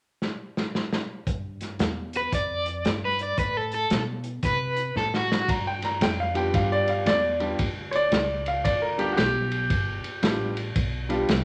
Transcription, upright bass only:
1.27 1.78 G2 medium
1.79 2.31 E2 medium
2.32 2.84 F2 medium
2.85 3.36 G2 medium
3.38 3.89 A2 medium
3.91 4.42 B2 medium
4.43 4.94 C3 medium
4.96 5.47 A2 medium
5.48 6.00 G2 medium
6.01 6.52 F2 medium
6.54 7.05 G2 medium
7.06 7.57 E2 medium
7.59 8.11 D2 medium
8.12 8.63 C#2 medium
8.65 9.16 D2 medium
9.18 9.69 B1 medium
9.70 10.02 G1 medium
10.04 muted upright bass stroke soft
10.23 10.74 A1 loud
10.76 11.27 B1 medium
11.29 11.44 C2 loud

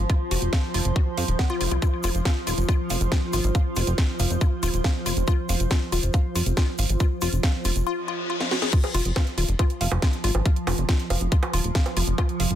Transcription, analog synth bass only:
0.31 0.38 F1 medium
0.42 0.49 F1 medium
0.74 0.81 F1 medium
0.85 0.92 F1 medium
1.18 1.24 F2 medium
1.28 1.35 D#1 medium
1.61 1.67 F1 medium
1.71 1.78 C2 medium
2.04 2.11 F1 loud
2.15 2.21 F1 medium
2.47 2.54 D#1 loud
2.58 2.65 F1 medium
2.90 2.97 F1 loud
3.01 3.08 F1 medium
3.33 3.40 G#1 medium
3.44 3.51 G#1 medium
3.76 3.83 F1 medium
3.87 3.94 F1 medium
4.20 4.26 F1 medium
4.30 4.37 F1 medium
4.63 4.70 D#1 medium
4.74 4.80 D#1 medium
5.06 5.13 F1 medium
5.17 5.24 F1 medium
5.49 5.56 F1 medium
5.60 5.67 F1 medium
5.92 5.99 D#1 medium
6.03 6.10 F1 medium
6.35 6.42 F1 medium
6.46 6.53 F1 medium
6.79 6.85 G#1 medium
6.89 6.96 G#1 medium
7.22 7.29 F1 medium
7.33 7.39 F1 medium
7.65 7.72 F1 medium
7.76 7.83 F1 medium
8.94 9.01 F1 loud
9.05 9.12 F1 medium
9.38 9.44 D#1 loud
9.48 9.55 F1 medium
9.81 9.88 F1 medium
9.92 9.98 F1 medium
10.24 10.31 G#1 medium
10.35 10.42 G#1 medium
10.67 10.74 F1 medium
10.78 10.85 F1 medium
11.10 11.17 F1 medium
11.21 11.28 F1 medium
11.53 11.60 D#1 medium
11.64 11.71 D#1 medium
11.97 12.03 F1 medium
12.07 12.14 F1 medium
12.40 12.47 F1 medium
12.51 12.55 F1 medium

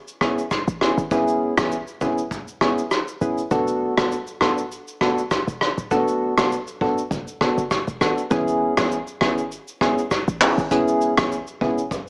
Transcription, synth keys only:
0.21 0.41 B3 medium
0.21 0.41 C#4 medium
0.21 0.42 E4 medium
0.21 0.42 G#4 medium
0.81 1.01 B3 medium
0.81 1.01 C#4 medium
0.81 1.02 E4 medium
0.81 1.02 G#4 medium
1.11 1.54 B3 medium
1.11 1.54 C#4 medium
1.11 1.54 E4 medium
1.11 1.54 G#4 loud
1.58 1.76 B3 medium
1.58 1.76 C#4 medium
1.58 1.76 E4 medium
1.58 1.76 G#4 medium
2.01 2.22 B3 medium
2.01 2.22 C#4 medium
2.01 2.22 E4 medium
2.01 2.22 G#4 medium
2.61 2.81 B3 medium
2.61 2.81 C#4 medium
2.61 2.82 E4 medium
2.61 2.82 G#4 medium
3.21 3.42 B3 medium
3.21 3.42 C#4 medium
3.21 3.42 E4 medium
3.21 3.42 G#4 medium
3.51 3.94 B3 medium
3.51 3.94 D4 medium
3.51 3.94 F#4 medium
3.51 3.94 A4 loud
3.98 4.16 B3 medium
3.98 4.16 D4 medium
3.98 4.16 F#4 medium
3.98 4.16 A4 medium
4.41 4.61 B3 medium
4.41 4.61 D4 medium
4.41 4.62 F#4 medium
4.41 4.62 A4 medium
5.01 5.21 B3 medium
5.01 5.21 D4 medium
5.01 5.21 F#4 medium
5.01 5.22 A4 medium
5.91 6.34 B3 medium
5.91 6.34 D4 medium
5.91 6.34 F#4 medium
5.91 6.34 A4 loud
6.37 6.56 B3 medium
6.37 6.56 D4 medium
6.37 6.56 F#4 medium
6.37 6.56 A4 medium
6.81 7.01 B3 medium
6.81 7.01 D4 medium
6.81 7.02 F#4 medium
6.81 7.02 A4 medium
7.41 7.61 B3 medium
7.41 7.61 D4 medium
7.41 7.62 F#4 medium
7.41 7.62 A4 medium
8.01 8.21 B3 medium
8.01 8.21 D4 medium
8.01 8.21 F#4 medium
8.01 8.22 A4 medium
8.30 8.73 B3 medium
8.30 8.73 C#4 medium
8.30 8.74 E4 medium
8.30 8.74 G#4 loud
8.77 8.96 B3 medium
8.77 8.96 C#4 medium
8.77 8.96 E4 medium
8.77 8.96 G#4 medium
9.21 9.41 B3 medium
9.21 9.41 C#4 medium
9.21 9.41 E4 medium
9.21 9.42 G#4 medium
9.81 10.01 B3 medium
9.81 10.01 C#4 medium
9.81 10.02 E4 medium
9.81 10.02 G#4 medium
10.41 10.61 B3 medium
10.41 10.61 C#4 medium
10.41 10.62 E4 medium
10.41 10.62 G#4 medium
10.71 11.14 B3 medium
10.71 11.14 C#4 medium
10.71 11.14 E4 medium
10.71 11.14 G#4 loud
11.17 11.36 B3 medium
11.17 11.36 C#4 medium
11.17 11.36 E4 medium
11.17 11.36 G#4 medium
11.61 11.81 B3 medium
11.61 11.81 C#4 medium
11.61 11.82 E4 medium
11.61 11.82 G#4 medium

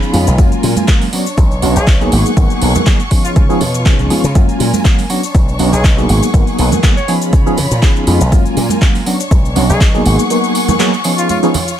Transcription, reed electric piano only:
0.00 0.11 F3 medium
0.00 0.11 B3 medium
0.00 0.11 C#4 medium
0.00 0.11 D#4 medium
0.00 0.11 G#4 loud
0.13 0.26 F3 medium
0.13 0.26 B3 medium
0.13 0.26 C#4 medium
0.13 0.26 D#4 medium
0.13 0.27 G#4 medium
0.38 0.85 F#3 loud
0.38 0.85 G#3 medium
0.38 0.85 A#3 medium
0.38 0.85 C#4 medium
0.38 0.85 F4 loud
0.88 1.07 F#3 medium
0.88 1.07 G#3 medium
0.88 1.07 A#3 medium
0.88 1.07 C#4 medium
0.88 1.08 F4 loud
1.13 1.25 F#3 medium
1.13 1.26 B3 medium
1.13 1.26 C#4 medium
1.13 1.26 D4 medium
1.13 1.26 F#4 medium
1.62 1.75 F#3 medium
1.62 1.75 B3 medium
1.62 1.75 C#4 medium
1.62 1.75 D4 medium
1.62 1.76 F#4 loud
2.00 2.34 F#3 loud
2.00 2.34 A#3 medium
2.00 2.34 B3 medium
2.00 2.34 D#4 medium
2.00 2.34 G#4 loud
2.36 2.84 F#3 medium
2.36 2.84 A#3 medium
2.36 2.84 B3 medium
2.36 2.84 D#4 medium
2.36 2.84 A#4 medium
2.86 2.99 F#3 medium
2.86 2.99 A#3 medium
2.86 2.99 B3 medium
2.86 2.99 D#4 medium
2.86 2.99 G#4 loud
3.11 3.46 F3 medium
3.11 3.46 B3 medium
3.11 3.46 C#4 medium
3.11 3.46 D#4 medium
3.11 3.47 G#4 loud
3.49 3.60 F3 loud
3.49 3.60 B3 loud
3.49 3.60 C#4 medium
3.49 3.60 D#4 medium
3.49 3.60 G#4 loud
3.85 4.08 F3 loud
3.85 4.08 B3 medium
3.85 4.08 C#4 medium
3.85 4.08 D#4 medium
3.85 4.08 G#4 loud
4.10 4.23 F3 medium
4.10 4.23 B3 medium
4.10 4.23 C#4 medium
4.10 4.23 D#4 medium
4.10 4.23 G#4 medium
4.35 4.82 F#3 loud
4.35 4.82 G#3 medium
4.35 4.82 A#3 medium
4.35 4.82 C#4 medium
4.35 4.82 F4 loud
4.84 5.04 F#3 medium
4.84 5.04 G#3 medium
4.84 5.04 A#3 medium
4.84 5.04 C#4 medium
4.84 5.04 F4 medium
5.09 5.22 F#3 medium
5.09 5.22 B3 medium
5.09 5.22 C#4 medium
5.09 5.22 D4 medium
5.09 5.23 F#4 loud
5.59 5.72 F#3 loud
5.59 5.72 B3 medium
5.59 5.72 C#4 medium
5.59 5.72 D4 medium
5.59 5.72 F#4 loud
5.97 6.31 F#3 loud
5.97 6.31 A#3 medium
5.97 6.31 B3 medium
5.97 6.31 D#4 medium
5.97 6.31 G#4 loud
6.33 6.80 F#3 medium
6.33 6.80 A#3 medium
6.33 6.81 B3 medium
6.33 6.81 D#4 medium
6.33 6.81 A#4 medium
6.83 6.96 F#3 loud
6.83 6.96 A#3 medium
6.83 6.96 B3 medium
6.83 6.96 D#4 medium
6.83 6.96 G#4 loud
7.08 7.43 F3 loud
7.08 7.43 B3 medium
7.08 7.43 C#4 medium
7.08 7.43 D#4 medium
7.08 7.43 G#4 loud
7.46 7.57 F3 loud
7.46 7.57 B3 medium
7.46 7.57 C#4 loud
7.46 7.57 D#4 medium
7.46 7.57 G#4 loud
7.82 8.04 F3 medium
7.82 8.04 B3 medium
7.82 8.05 C#4 medium
7.82 8.05 D#4 medium
7.82 8.05 G#4 loud
8.07 8.20 F3 medium
8.07 8.20 B3 medium
8.07 8.20 C#4 medium
8.07 8.20 D#4 medium
8.07 8.20 G#4 medium
8.32 8.79 F#3 loud
8.32 8.79 G#3 medium
8.32 8.79 A#3 medium
8.32 8.79 C#4 medium
8.32 8.79 F4 loud
8.81 9.01 F#3 medium
8.81 9.01 G#3 medium
8.81 9.01 A#3 medium
8.81 9.01 C#4 medium
8.81 9.01 F4 medium
9.06 9.19 F#3 medium
9.06 9.19 B3 medium
9.06 9.19 C#4 medium
9.06 9.19 D4 medium
9.06 9.19 F#4 loud
9.56 9.68 F#3 loud
9.56 9.69 B3 medium
9.56 9.69 C#4 medium
9.56 9.69 D4 medium
9.56 9.69 F#4 loud
9.94 10.27 F#3 loud
9.94 10.28 A#3 loud
9.94 10.28 B3 medium
9.94 10.28 D#4 medium
9.94 10.28 G#4 loud
10.30 10.77 F#3 medium
10.30 10.77 A#3 medium
10.30 10.77 B3 medium
10.30 10.77 D#4 medium
10.30 10.78 A#4 medium
10.79 10.92 F#3 loud
10.79 10.92 A#3 medium
10.79 10.93 B3 medium
10.79 10.93 D#4 medium
10.79 10.93 G#4 loud
11.04 11.40 F3 medium
11.04 11.40 B3 medium
11.04 11.40 C#4 medium
11.04 11.40 D#4 medium
11.04 11.40 G#4 loud
11.43 11.54 F3 loud
11.43 11.54 B3 loud
11.43 11.54 C#4 loud
11.43 11.54 D#4 loud
11.43 11.54 G#4 loud

